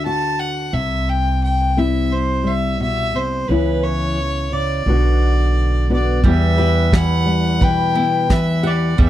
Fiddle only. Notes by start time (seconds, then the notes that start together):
0.05 A5
0.39 F#5
0.73 E5
1.09 G5
1.44 G5
1.78 E5
2.12 C5
2.47 E5
2.81 E5
3.16 C5
3.48 B4
3.83 C#5
4.52 D5
5.93 D5
6.27 E5
6.95 F#5
7.64 G5
8.32 E5
8.66 D5
9.00 E5